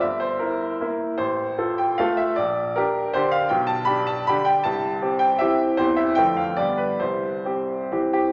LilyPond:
\new Staff \with { instrumentName = "Grand piano" } { \time 3/4 \key g \dorian \tempo 4 = 154 << { e''8 c''8 bes'4. r8 | c''4. g''8 f''8 e''8 | d''4 bes'4 c''8 f''8 | \key c \major g''8 a''8 b''8 a''8 b''8 g''8 |
a''4. g''8 e''8 r8 | c''8 e''8 g''8 f''8 d''8 b'8 | c''2 r8 g'8 | } \\ { g,,4 e'4 <bes e'>4 | a,,4 <f' a'>4 <a f' a'>4 | bes,,4 <d' g'>4 <d d' g'>4 | b,,4 <d' g'>4 <d d' g'>4 |
c,4 <c' g'>4 <e c' g'>4 | <e, e c' g'>4 <f, d a a'>4 <g, d b g'>4 | c,4 <c' g'>4 <e c' g'>4 | } >> }